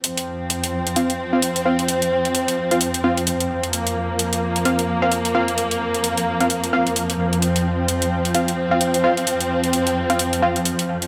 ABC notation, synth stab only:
X:1
M:4/4
L:1/16
Q:"Swing 16ths" 1/4=130
K:Cphr
V:1 name="Synth stab"
z8 [CFf] z2 [CFf] z2 [CFf] z | z6 z [CFf] z2 [CFf] z4 z | z8 [CFf] z2 [CFf] z2 [CFf] z | z6 z [CFf] z2 [CFf] z4 z |
z8 [CFf] z2 [CFf] z2 [CFf] z | z6 z [CFf] z2 [CFf] z4 z |]